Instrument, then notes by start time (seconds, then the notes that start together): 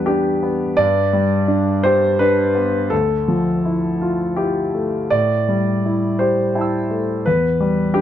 grand piano
Already playing: E2 G3 B3 D4 G4 B4
0.06 D4 G4
0.43 B3
0.77 G2 D5
1.13 G3
1.48 D4
1.83 G4 C5
2.19 D4 B4
2.55 B3
2.90 D2 A4
3.28 F3
3.66 E4
4.01 F4
4.36 E4 G4
4.74 A3
5.10 A2 D5
5.49 G3
5.85 E4
6.19 G4 C5
6.55 E4 G5 A5
6.61 E6
6.90 A3
7.26 E2 B4
7.60 G3
7.94 D4 G4